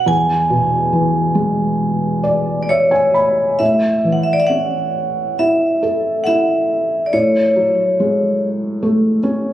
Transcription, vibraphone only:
0.08 G#5
2.63 D5
2.69 C#5
3.59 E5
4.12 F#5
4.23 E5
4.33 D5
4.40 E5
4.47 F#5
5.39 E5
6.24 E5 F#5
7.06 D5
7.13 C#5

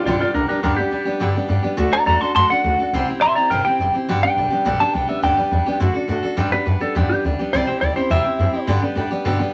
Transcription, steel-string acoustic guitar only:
0.06 G2 D3 G3 B3 D4 G4
0.20 G3 B3 D4 G4
0.34 G3 B3 D4 G4
0.49 G3 B3 D4 G4
0.63 G2 D3 G3 B3 D4 G4
0.78 G3 B3 D4 G4
0.91 G3 B3 D4 G4
1.05 G3 B3 D4 G4
1.20 G2 D3 G3 B3 D4 G4
1.35 G3 B3 D4 G4
1.48 G3 B3 D4 G4
1.62 G3 B3 D4 G4
1.77 D3 A3 D4 F#4 A4
1.92 D4 F#4 A4
2.05 A3 D4 F#4 A4
2.20 D4 F#4 A4
2.34 D3 A3 D4 F#4 A4
2.50 D4 F#4 A4
2.64 A3 D4 F#4 A4
2.79 D4 F#4 A4
2.94 C3 G3 C4 E4 G4
3.08 C4 E4 G4
3.21 G3 C4 E4 G4
3.36 C4 E4 G4
3.51 C3 G3 C4 E4 G4
3.65 C4 E4 G4
3.80 G3 C4 E4 G4
3.94 C4 E4 G4
4.09 G2 D3 G3 B3 D4 G4
4.22 G3 B3 D4 G4
4.37 G3 B3 D4 G4
4.50 G3 B3 D4 G4
4.65 G2 D3 G3 B3 D4 G4
4.79 G3 B3 D4 G4
4.94 G3 B3 D4 G4
5.08 G3 B3 D4 G4
5.23 G2 D3 G3 B3 D4 G4
5.37 G3 B3 D4 G4
5.51 G3 B3 D4 G4
5.66 G3 B3 D4 G4
5.80 D3 A3 D4 F#4 A4
5.94 D4 F#4 A4
6.08 A3 D4 F#4 A4
6.23 D4 F#4 A4
6.37 G2 D3 G3 B3 D4 G4
6.51 G3 B3 D4 G4
6.66 G3 B3 D4 G4
6.80 G3 B3 D4 G4
6.95 G2 D3 G3 B3 D4 G4
7.10 G3 B3 D4 G4
7.24 G3 B3 D4 G4
7.39 G3 B3 D4 G4
7.54 C3 G3 C4 E4 G4
7.67 C4 E4 G4
7.81 G3 C4 E4 G4
7.96 C4 E4 G4
8.10 C3 G3 C4 E4 G4
8.24 C4 E4 G4
8.39 G3 C4 E4 G4
8.53 C4 E4 G4
8.67 G2 D3 G3 B3 D4 G4
8.82 G3 B3 D4 G4
8.95 G3 B3 D4 G4
9.11 G3 B3 D4 G4
9.25 G2 D3 G3 B3 D4 G4
9.39 G3 B3 D4 G4

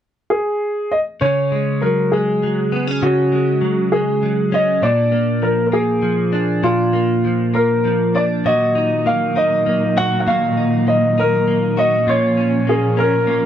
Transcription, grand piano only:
0.30 G#4
0.91 D#5
1.21 C#5
1.81 A#4
2.12 G#4
3.03 F#4
3.92 G#4
4.54 D#5
4.83 D5
5.43 A#4
5.67 A#4
5.73 G#4
6.64 F4
7.55 A#4
8.16 D5
8.46 D#5
9.07 F5
9.37 D#5
9.98 F#5
10.20 F#5
10.27 F5
10.88 D#5
11.19 A#4
11.79 D#5
12.09 C#5
12.69 G#4
12.99 A#4

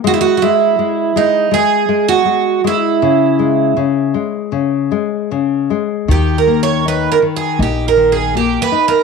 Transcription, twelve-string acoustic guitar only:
0.07 F#4
0.14 E4
0.21 F#4
0.37 F#4
0.42 E4
1.17 D#4
1.54 G#4
2.08 F#4
2.67 E4
6.11 G4
6.38 A#4
6.63 C#5
6.88 B4
7.12 A#4
7.36 G#4
7.62 G4
7.88 A#4
8.12 G#4
8.37 G4
8.62 B4
8.88 A#4

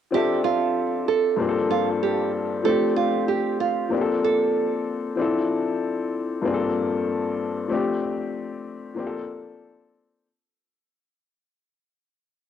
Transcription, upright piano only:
0.10 F3 C4 D4
0.15 A4 E5
1.37 G2 F3 A#3 C4
1.41 D4 G#4
1.49 A4
2.63 F3 A3 C4
2.67 D4 G4
3.89 F3 A#3 C4
3.93 D4 G4
4.01 A4
5.15 F3 C4 D4
5.20 E4 A4
6.42 G2 F3 A#3 C4
6.46 D4 G#4
6.54 A4
7.68 F3 A3 C4
7.72 D4 G4
8.94 F3 A#3 C4
8.99 D4 G4
9.07 A4

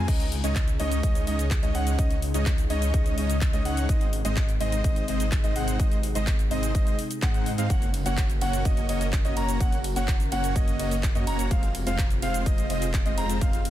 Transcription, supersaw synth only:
0.08 G#3 C#4 D#4 C#5 D#5
0.44 G#3 C#4 D#4 C#5 D#5
0.80 G#3 C#4 D#4 C#5 D#5
1.03 G#3 C#4 D#4 C#5 D#5
1.27 G#3 C#4 D#4 C#5 D#5
1.63 G#3 C#4 D#4 C#5 D#5
1.75 G#3 C#4 D#4 C#5 F#5
1.99 G#3 C#4 D#4 D#5
2.34 G#3 C#4 D#4 C#5 D#5
2.70 G#3 C#4 D#4 C#5 D#5
2.94 G#3 C#4 D#4 C#5 D#5
3.18 G#3 C#4 D#4 C#5 D#5
3.53 G#3 C#4 D#4 C#5 D#5
3.65 G#3 C#4 D#4 C#5 F#5
3.89 G#3 C4 D#4 D#5
4.25 G#3 C4 D#4 C5 D#5
4.61 G#3 C4 D#4 C5 D#5
4.84 D#4 D#5
5.08 G#3 C4 D#4 C5 D#5
5.44 G#3 C4 D#4 C5 D#5
5.56 G#3 C4 D#4 C5 F#5
5.80 G#3 C4 D#4 D#5
6.15 G#3 C4 D#4 C5 D#5
6.51 G#3 C4 D#4 C5 D#5
6.75 G#3 C4 D#4 D#5
7.22 G#3 C4 D#4 C5 F#5
7.58 G#3 C4 D#4 C5 F5
7.70 A#3 C#4 F#4 C#5 F#5
8.06 A#3 C#4 F#4 C#5 F#5
8.41 A#3 C#4 F#4 C#5 F#5
8.65 A#3 C#4 F#4 C#5 D#5
8.89 A#3 C#4 F#4 C#5 D#5
9.25 A#3 C#4 F#4 C#5 D#5
9.37 A#3 C#4 F#4 C#5 A#5
9.60 A#3 C#4 F#4 F#5
9.96 A#3 C#4 F#4 C#5 F#5
10.32 A#3 C#4 F#4 C#5 F#5
10.56 A#3 C#4 F#4 C#5 D#5
10.80 A#3 C#4 F#4 C#5 D#5
11.15 A#3 C#4 F#4 C#5 D#5
11.27 A#3 C#4 F#4 C#5 A#5
11.51 G#3 C4
11.87 G#3 C4 F4 C5 F5
12.22 G#3 C4 F4 C5 F5
12.46 G#3 C4 F4 D#5
12.70 G#3 C4 F4 C5 D#5
13.06 G#3 C4 F4 C5 D#5
13.18 G#3 C4 F4 C5 A#5
13.41 G#3 C4 F4 C5 F5

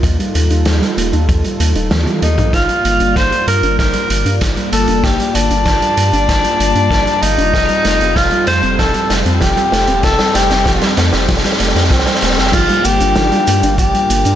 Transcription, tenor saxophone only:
2.23 D#4
2.54 F4
3.16 C5
3.48 A#4
3.79 A#4
4.73 A4
5.04 G4
5.35 D4
7.22 D#4
8.16 F4
8.47 C5
8.79 A4
9.41 G4
10.04 A4
10.35 G4
11.91 C4
12.54 F4
12.85 G4
13.79 G4

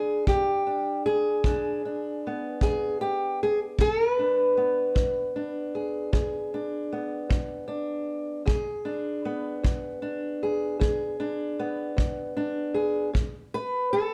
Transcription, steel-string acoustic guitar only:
Already playing: D4 G#4
0.27 E2 G4
0.67 D4
1.06 G#4
1.45 E2 D4
1.85 D4
2.27 B3
2.63 E2 G#4
3.01 G4
3.43 G#4
3.80 E2 A4
4.00 A#4
4.13 B4
4.19 D4
4.57 B3
4.95 E2
5.36 D4
5.75 G#4
6.13 E2 G#4
6.54 D4
6.93 B3
7.29 E2
7.68 D4
8.46 E2 G#4
8.85 D4
9.25 B3
9.63 E2
10.02 D4
10.43 G#4
10.79 E2 G#4
11.20 D4
11.59 B3
11.97 E2
12.37 D4
12.74 G#4
13.13 A2
13.54 B4
13.93 A4

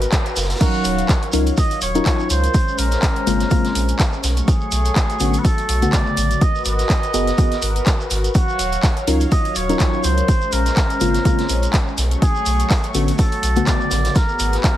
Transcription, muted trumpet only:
0.61 F#4
1.58 D#5
1.82 C#5
2.30 C5
2.79 A#4
4.48 G#4
5.38 B4
5.44 A4
5.93 D5
6.41 D#5
6.66 D#5
8.35 F#4
9.32 D#5
9.56 C#5
10.04 C5
10.53 A#4
12.22 G#4
13.19 A4
13.67 D5
14.16 A#4
14.58 B4
14.64 A#4

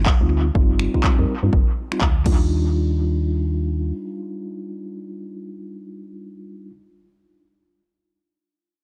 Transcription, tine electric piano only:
0.21 G3 C4 D#4 F4
0.55 G3 C4 D#4 F4
0.94 G3 C4 D#4 F4
1.18 G3 C4 D#4 A#4
1.43 G3 C4 D#4 F4
1.91 G3 C4 D#4 F4
2.25 G3 D4 D#4 F4

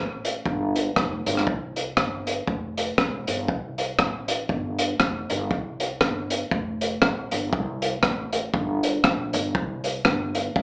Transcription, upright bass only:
Already playing: A1
0.46 G1
0.97 F1
1.26 G1
1.47 C2
1.98 G1
2.48 F1
2.98 E1
3.28 G1
3.49 C2
3.99 A1
4.49 G1
5.00 F1
5.30 G1
5.51 C2
6.01 G1
6.52 F1
7.03 A1
7.32 G1
7.53 C2
8.04 A1
8.54 G1
9.05 A#1
9.34 G1
9.55 C2
10.06 G1
10.56 F1

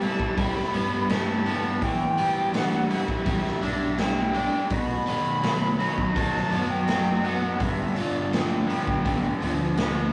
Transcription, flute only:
0.01 A5
0.39 B5
1.11 A5
1.82 G5
2.56 F#5
3.27 E5
3.98 G5
4.71 B5
6.16 A5
6.70 G5
7.24 F#5
7.62 E5
7.97 D5
8.33 G5

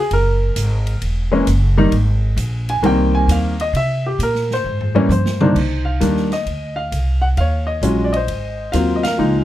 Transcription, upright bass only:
0.11 F#1
0.56 G#1
1.02 E1
1.47 F#1
1.92 G#1
2.37 A#1
2.82 C2
3.28 D#2
3.73 C3
4.19 A#2
4.64 G#2
5.09 G2
5.56 C2
6.01 D#2
6.46 D2
6.92 C2
7.37 D#2
7.82 A#1
8.27 G#1
8.73 D#2
9.19 C#2

